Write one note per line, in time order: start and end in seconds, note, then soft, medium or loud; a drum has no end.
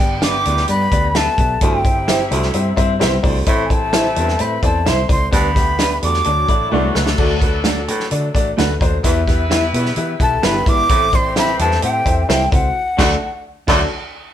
0.00 0.42 G1 loud
0.00 1.35 D3 medium
0.00 0.13 B3 medium
0.00 1.35 B3 medium
0.00 0.14 D4 medium
0.00 0.14 G4 medium
0.00 0.23 G4 medium
0.00 1.35 G4 medium
0.00 0.14 B4 medium
0.00 0.14 D5 medium
0.00 0.25 G5 medium
0.00 closed hi-hat medium
0.22 0.37 B3 medium
0.22 0.37 D4 medium
0.22 0.32 D4 medium
0.22 0.37 G4 medium
0.22 0.33 G4 medium
0.22 0.37 B4 medium
0.22 0.33 B4 medium
0.22 0.69 D5 medium
0.22 0.37 E5 medium
0.22 0.69 D6 loud
0.22 snare loud
0.22 closed hi-hat loud
0.45 0.64 D2 loud
0.45 0.65 E2 medium
0.45 0.60 B3 medium
0.45 0.60 D4 medium
0.45 0.60 G4 medium
0.45 0.61 B4 medium
0.45 0.61 D5 medium
0.45 closed hi-hat medium
0.57 snare soft
0.68 0.87 G2 loud
0.68 0.83 B3 medium
0.68 0.83 D4 medium
0.68 0.83 G4 medium
0.68 0.83 B4 medium
0.68 1.13 B4 medium
0.68 0.84 D5 loud
0.68 1.18 B5 loud
0.68 closed hi-hat medium
0.92 1.27 D2 medium
0.92 1.06 B3 medium
0.92 1.06 D4 medium
0.92 1.07 G4 medium
0.92 1.07 B4 medium
0.92 1.07 D5 loud
0.92 kick loud
0.92 closed hi-hat medium
1.15 1.29 B3 medium
1.15 1.25 D4 medium
1.15 1.30 D4 medium
1.15 1.30 G4 medium
1.15 1.25 G4 medium
1.15 1.63 A4 medium
1.15 1.30 B4 medium
1.15 1.26 B4 medium
1.15 1.30 E5 loud
1.15 1.65 A5 loud
1.15 snare loud
1.15 closed hi-hat medium
1.38 1.56 B1 medium
1.38 1.53 B3 medium
1.38 1.53 D4 medium
1.38 1.53 G4 medium
1.38 1.53 B4 medium
1.38 1.53 E5 medium
1.38 kick loud
1.38 closed hi-hat medium
1.61 2.28 G1 loud
1.61 1.81 D2 loud
1.61 3.21 C3 medium
1.61 3.21 G3 medium
1.61 1.76 C4 medium
1.61 1.76 E4 medium
1.61 3.21 E4 loud
1.61 1.76 G4 medium
1.61 2.32 G4 medium
1.61 1.77 C5 medium
1.61 1.77 E5 loud
1.61 2.32 G5 medium
1.61 kick loud
1.61 closed hi-hat loud
1.84 1.99 C4 medium
1.84 1.99 E4 medium
1.84 1.99 G4 medium
1.84 2.00 C5 medium
1.84 2.00 E5 medium
1.84 kick loud
1.84 closed hi-hat medium
2.08 2.22 C4 medium
2.08 2.22 E4 medium
2.08 2.18 E4 medium
2.08 2.23 G4 medium
2.08 2.18 G4 medium
2.08 2.23 C5 medium
2.08 2.18 C5 medium
2.08 2.23 E5 medium
2.08 snare loud
2.08 closed hi-hat loud
2.31 2.49 C2 loud
2.31 2.50 D2 loud
2.31 2.45 C4 medium
2.31 2.46 E4 medium
2.31 2.46 G4 medium
2.31 2.46 C5 medium
2.31 2.46 E5 loud
2.31 closed hi-hat medium
2.43 snare soft
2.53 2.72 G2 loud
2.53 2.69 C4 medium
2.53 2.69 E4 medium
2.53 2.69 G4 medium
2.53 2.69 C5 medium
2.53 2.69 E5 loud
2.53 closed hi-hat medium
2.76 3.02 G2 medium
2.76 2.91 C4 loud
2.76 2.92 E4 loud
2.76 2.92 G4 medium
2.76 2.92 C5 loud
2.76 2.92 E5 loud
2.76 kick loud
2.76 closed hi-hat medium
2.99 3.18 C2 medium
2.99 3.19 E2 medium
2.99 3.15 C4 loud
2.99 3.15 E4 loud
2.99 3.10 E4 medium
2.99 3.15 G4 loud
2.99 3.11 G4 loud
2.99 3.15 C5 medium
2.99 3.11 C5 medium
2.99 3.15 E5 loud
2.99 snare loud
2.99 closed hi-hat medium
3.23 3.42 C2 loud
3.23 3.43 D2 medium
3.23 3.38 C4 loud
3.23 3.38 E4 medium
3.23 3.38 G4 medium
3.23 3.38 C5 medium
3.23 3.38 D5 loud
3.23 kick loud
3.23 open hi-hat medium
3.46 4.13 A1 loud
3.46 3.66 A2 loud
3.46 5.07 C3 medium
3.46 5.06 A3 medium
3.46 3.61 C4 loud
3.46 3.61 E4 loud
3.46 5.06 E4 loud
3.46 3.62 A4 loud
3.46 3.62 C5 medium
3.46 3.62 E5 loud
3.46 kick loud
3.46 closed hi-hat loud
3.64 3.70 G#4 medium
3.64 3.73 G#5 medium
3.69 3.84 C4 medium
3.69 3.84 E4 medium
3.69 3.84 A4 medium
3.69 4.40 A4 medium
3.69 3.85 C5 medium
3.69 3.85 G5 medium
3.69 4.43 A5 loud
3.69 kick medium
3.69 closed hi-hat medium
3.93 4.08 C4 medium
3.93 4.08 E4 medium
3.93 4.03 E4 loud
3.93 4.08 A4 medium
3.93 4.03 A4 medium
3.93 4.08 C5 medium
3.93 4.04 C5 medium
3.93 4.08 E5 medium
3.93 snare loud
3.93 closed hi-hat loud
4.16 4.34 E2 medium
4.16 4.36 G2 medium
4.16 4.31 C4 medium
4.16 4.31 E4 medium
4.16 4.31 A4 medium
4.16 4.31 C5 medium
4.16 4.31 E5 medium
4.16 closed hi-hat medium
4.28 snare soft
4.39 4.58 A2 loud
4.39 4.54 C4 medium
4.39 4.54 E4 medium
4.39 4.54 A4 medium
4.39 4.63 B4 medium
4.39 4.54 C5 medium
4.39 4.54 E5 medium
4.39 4.64 B5 loud
4.39 closed hi-hat medium
4.62 4.88 E2 medium
4.62 4.77 C4 loud
4.62 4.77 E4 medium
4.62 4.77 A4 medium
4.62 4.86 A4 medium
4.62 4.78 C5 medium
4.62 4.78 D5 loud
4.62 4.90 A5 loud
4.62 kick loud
4.62 closed hi-hat medium
4.85 5.04 C2 medium
4.85 5.00 C4 medium
4.85 5.00 E4 medium
4.85 4.96 E4 medium
4.85 5.00 A4 medium
4.85 4.96 A4 medium
4.85 5.01 C5 medium
4.85 4.97 C5 medium
4.85 5.10 C5 medium
4.85 5.01 E5 loud
4.85 5.10 C6 loud
4.85 snare loud
4.85 closed hi-hat medium
5.08 5.27 C#2 medium
5.08 5.23 C4 medium
5.08 5.23 E4 medium
5.08 5.24 A4 medium
5.08 5.24 C5 medium
5.08 5.32 C5 medium
5.08 5.24 D5 medium
5.08 5.32 C6 loud
5.08 kick loud
5.08 closed hi-hat medium
5.31 5.99 D2 loud
5.31 5.51 G2 loud
5.31 6.01 D3 medium
5.31 5.46 B3 loud
5.31 6.01 B3 medium
5.31 5.47 D4 medium
5.31 5.47 G4 medium
5.31 6.01 G4 medium
5.31 5.47 B4 medium
5.31 5.99 B4 medium
5.31 5.47 D5 loud
5.31 5.99 B5 loud
5.31 kick loud
5.31 closed hi-hat loud
5.55 5.70 B3 medium
5.55 5.70 D4 medium
5.55 5.70 G4 medium
5.55 5.70 B4 medium
5.55 5.71 E5 medium
5.55 kick loud
5.55 snare soft
5.55 closed hi-hat medium
5.78 5.93 B3 medium
5.78 5.89 D4 medium
5.78 5.93 D4 medium
5.78 5.93 G4 medium
5.78 5.89 G4 medium
5.78 5.94 B4 medium
5.78 5.90 B4 medium
5.78 5.94 E5 medium
5.78 snare loud
5.78 closed hi-hat loud
6.02 6.21 D2 medium
6.02 6.20 E2 medium
6.02 6.17 B3 medium
6.02 6.17 D4 medium
6.02 6.17 G4 medium
6.02 6.17 B4 medium
6.02 6.17 D5 medium
6.02 6.91 D5 medium
6.02 6.92 D6 loud
6.02 closed hi-hat medium
6.14 snare soft
6.24 6.44 D2 loud
6.24 6.48 F#3 medium
6.24 8.78 F#3 medium
6.24 6.40 A3 medium
6.24 6.40 D4 medium
6.24 6.48 D4 medium
6.24 8.77 D4 loud
6.24 6.40 F#4 medium
6.24 6.40 A4 medium
6.24 8.77 A4 loud
6.24 6.40 D5 medium
6.24 closed hi-hat medium
6.48 6.66 A1 medium
6.48 6.63 A3 medium
6.48 6.63 D4 medium
6.48 6.71 E4 medium
6.48 6.63 F#4 medium
6.48 6.63 A4 medium
6.48 6.63 D5 loud
6.48 kick medium
6.48 closed hi-hat medium
6.71 6.90 C2 medium
6.71 6.91 E2 medium
6.71 6.82 A3 medium
6.71 6.86 A3 loud
6.71 7.39 A3 medium
6.71 6.87 D4 medium
6.71 6.82 D4 medium
6.71 7.38 F#4 medium
6.71 6.87 F#4 loud
6.71 6.82 F#4 medium
6.71 6.87 A4 loud
6.71 6.87 D5 loud
6.95 7.13 C#2 medium
6.95 7.14 D2 medium
6.95 7.10 A3 medium
6.95 7.10 D4 medium
6.95 7.10 F#4 medium
6.95 7.10 A4 medium
6.95 7.10 B4 loud
6.95 snare loud
7.07 snare loud
7.18 7.88 D2 loud
7.18 7.37 D2 medium
7.18 7.33 A3 loud
7.18 7.33 D4 loud
7.18 7.33 F#4 loud
7.18 7.33 A4 loud
7.18 7.33 D5 loud
7.18 kick loud
7.18 crash medium
7.42 7.56 A3 loud
7.42 7.57 D4 medium
7.42 7.57 F#4 medium
7.42 7.57 A4 medium
7.42 7.57 B4 medium
7.42 kick loud
7.42 closed hi-hat medium
7.64 7.74 A3 medium
7.64 7.79 A3 medium
7.64 7.75 D4 medium
7.64 7.80 D4 medium
7.64 7.80 F#4 medium
7.64 7.75 F#4 medium
7.64 7.80 A4 medium
7.64 7.80 D5 medium
7.64 snare loud
7.64 closed hi-hat loud
7.88 8.06 A2 loud
7.88 8.07 A2 medium
7.88 8.03 A3 medium
7.88 8.03 D4 medium
7.88 8.03 F#4 medium
7.88 8.03 A4 medium
7.88 8.03 B4 medium
7.88 closed hi-hat medium
8.00 snare soft
8.11 8.29 D3 loud
8.11 8.26 A3 medium
8.11 8.26 D4 medium
8.11 8.26 F#4 medium
8.11 8.26 A4 medium
8.11 8.26 D5 loud
8.11 closed hi-hat medium
8.34 8.52 A1 medium
8.34 8.49 A3 loud
8.34 8.49 D4 loud
8.34 8.49 F#4 loud
8.34 8.49 A4 medium
8.34 8.49 D5 loud
8.34 kick medium
8.34 closed hi-hat medium
8.57 8.76 D2 loud
8.57 8.67 A3 medium
8.57 8.72 A3 loud
8.57 8.72 D4 medium
8.57 8.68 D4 medium
8.57 8.72 F#4 loud
8.57 8.68 F#4 medium
8.57 8.72 A4 loud
8.57 8.73 B4 loud
8.57 snare loud
8.57 closed hi-hat medium
8.81 8.99 D#2 medium
8.81 8.95 A3 loud
8.81 8.95 D4 medium
8.81 8.96 F#4 medium
8.81 8.96 A4 medium
8.81 8.96 C5 loud
8.81 kick loud
8.81 closed hi-hat medium
9.03 9.70 E2 loud
9.03 9.23 E2 medium
9.03 10.63 G3 medium
9.03 9.18 B3 loud
9.03 9.18 E4 loud
9.03 10.64 E4 medium
9.03 9.18 G4 medium
9.03 9.19 B4 loud
9.03 10.64 B4 loud
9.03 9.19 E5 loud
9.03 kick loud
9.03 closed hi-hat loud
9.27 9.42 B3 medium
9.27 9.42 E4 medium
9.27 9.42 G4 medium
9.27 9.42 B4 medium
9.27 9.42 E5 loud
9.27 kick loud
9.27 snare soft
9.27 closed hi-hat medium
9.50 9.65 B3 loud
9.50 9.60 E4 medium
9.50 9.65 E4 medium
9.50 9.65 G4 medium
9.50 9.61 G4 medium
9.50 9.66 B4 medium
9.50 9.61 B4 medium
9.50 9.66 E5 loud
9.50 snare loud
9.50 closed hi-hat medium
9.73 9.93 E2 medium
9.73 9.91 B2 loud
9.73 9.88 B3 medium
9.73 9.88 E4 medium
9.73 9.88 G4 medium
9.73 9.89 B4 medium
9.73 9.89 E5 medium
9.73 closed hi-hat medium
9.86 snare soft
9.96 10.14 E3 loud
9.96 10.11 B3 medium
9.96 10.11 E4 medium
9.96 10.12 G4 loud
9.96 10.12 B4 medium
9.96 10.12 E5 loud
9.96 closed hi-hat medium
10.19 10.38 B1 medium
10.19 10.34 B3 medium
10.19 10.34 E4 medium
10.19 10.35 G4 medium
10.19 10.42 A4 medium
10.19 10.35 B4 medium
10.19 10.35 E5 medium
10.19 10.46 A5 loud
10.19 kick loud
10.19 closed hi-hat medium
10.42 10.61 G1 medium
10.42 10.62 G2 medium
10.42 10.57 B3 loud
10.42 10.53 E4 medium
10.42 10.57 E4 medium
10.42 10.58 G4 medium
10.42 10.53 G4 medium
10.42 10.58 B4 medium
10.42 10.67 B4 medium
10.42 10.54 B4 medium
10.42 10.58 E5 loud
10.42 10.70 B5 loud
10.42 snare loud
10.42 closed hi-hat medium
10.66 10.84 G#1 loud
10.66 10.85 E2 medium
10.66 10.81 B3 medium
10.66 10.81 E4 medium
10.66 10.81 G4 medium
10.66 10.81 B4 medium
10.66 11.14 D5 medium
10.66 10.81 E5 medium
10.66 11.17 D6 loud
10.66 kick loud
10.66 closed hi-hat medium
10.89 11.56 A1 loud
10.89 11.08 A2 medium
10.89 12.49 E3 medium
10.89 11.04 C4 medium
10.89 12.49 C4 medium
10.89 11.04 E4 medium
10.89 12.49 G4 loud
10.89 11.04 A4 medium
10.89 11.05 C5 medium
10.89 11.05 E5 loud
10.89 kick loud
10.89 closed hi-hat loud
11.13 11.27 C4 medium
11.13 11.27 E4 medium
11.13 11.27 A4 medium
11.13 11.28 C5 medium
11.13 11.37 C5 medium
11.13 11.28 D5 loud
11.13 11.37 C6 loud
11.13 kick loud
11.13 closed hi-hat medium
11.36 11.46 C4 medium
11.36 11.51 C4 medium
11.36 11.51 E4 medium
11.36 11.46 E4 medium
11.36 11.51 A4 medium
11.36 11.47 A4 medium
11.36 11.51 C5 medium
11.36 11.51 G5 medium
11.36 11.59 B5 loud
11.36 snare loud
11.36 closed hi-hat loud
11.59 11.77 E2 loud
11.59 11.78 G2 medium
11.59 11.74 C4 medium
11.59 11.74 E4 medium
11.59 11.74 A4 medium
11.59 11.82 A4 medium
11.59 11.74 C5 medium
11.59 11.74 E5 medium
11.59 11.81 A5 medium
11.59 closed hi-hat medium
11.71 snare soft
11.82 12.00 A2 loud
11.82 11.97 C4 medium
11.82 11.97 E4 medium
11.82 12.27 G4 medium
11.82 11.97 A4 medium
11.82 11.97 C5 medium
11.82 11.97 E5 loud
11.82 12.26 G5 loud
11.82 closed hi-hat medium
12.05 12.24 E2 medium
12.05 12.20 C4 medium
12.05 12.20 E4 medium
12.05 12.20 A4 medium
12.05 12.20 C5 medium
12.05 12.20 E5 loud
12.05 kick medium
12.05 closed hi-hat medium
12.28 12.46 C2 loud
12.28 12.43 C4 medium
12.28 12.39 C4 loud
12.28 12.43 E4 medium
12.28 12.39 E4 loud
12.28 12.51 G4 medium
12.28 12.43 A4 medium
12.28 12.39 A4 loud
12.28 12.43 C5 medium
12.28 12.43 E5 loud
12.28 12.52 G5 loud
12.28 snare loud
12.28 closed hi-hat medium
12.52 12.70 C#2 loud
12.52 12.66 C4 medium
12.52 12.66 E4 medium
12.52 12.75 F#4 medium
12.52 12.67 A4 medium
12.52 12.67 C5 medium
12.52 12.67 E5 medium
12.52 13.41 F#5 loud
12.52 kick loud
12.52 closed hi-hat medium
12.98 13.10 D2 loud
12.98 13.14 D2 loud
12.98 13.10 D3 loud
12.98 13.11 A3 loud
12.98 13.15 A3 loud
12.98 13.14 D4 loud
12.98 13.14 F#4 loud
12.98 13.10 F#4 loud
12.98 13.15 F#4 loud
12.98 13.14 A4 loud
12.98 13.15 A4 loud
12.98 13.14 D5 loud
12.98 13.14 F#5 loud
12.98 kick loud
12.98 snare loud
12.98 crash medium
13.67 13.84 D2 loud
13.67 13.80 F#2 loud
13.67 13.80 D3 loud
13.67 13.84 F#3 loud
13.67 13.80 A3 loud
13.67 13.83 D4 medium
13.67 13.84 D4 loud
13.67 13.84 F#4 loud
13.67 13.84 F#4 medium
13.67 13.80 F#4 loud
13.67 13.84 A4 loud
13.67 13.84 A4 medium
13.67 13.84 D5 loud
13.67 13.84 F#5 loud
13.67 kick loud
13.67 snare loud
13.67 crash medium